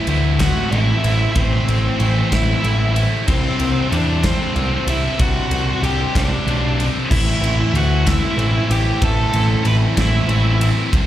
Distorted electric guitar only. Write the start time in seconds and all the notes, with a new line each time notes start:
Already playing: A2
0.07 E3 A3 C4 E4
0.40 A3 C4 E4
0.72 E3 A3 C4 E4
1.03 A3 C4 E4
1.36 A2 E3 A3 C4 E4
1.66 A3 C4 E4
1.99 E3 A3 C4 E4
2.30 A3 C4 E4
2.63 E3 A3 C4 E4
2.95 A3 C4 E4
3.26 C3 G3 C4 D4
3.59 G3 C4 D4
3.91 C3 G3 C4 D4
4.23 G3 C4 D4
4.54 C3 G3 C4 D4
4.86 G3 C4 D4
5.18 C3 G3 C4 D4
5.50 G3 C4 D4
5.82 C3 G3 C4 D4
6.14 G3 C4 D4
6.46 C3 G3 C4 D4
6.78 G3 C4 D4
7.10 A2 E3 A3 C4 E4
7.42 A3 C4 E4
7.73 E3 A3 C4 E4
8.06 A3 C4 E4
8.37 E3 A3 C4 E4
8.69 A3 C4 E4
9.01 A2 E3 A3 C4 E4
9.32 A3 C4 E4
9.64 E3 A3 C4 E4
9.96 A3 C4 E4
10.28 E3 A3 C4 E4
10.60 A3 C4 E4
10.92 C3 G3 C4 D4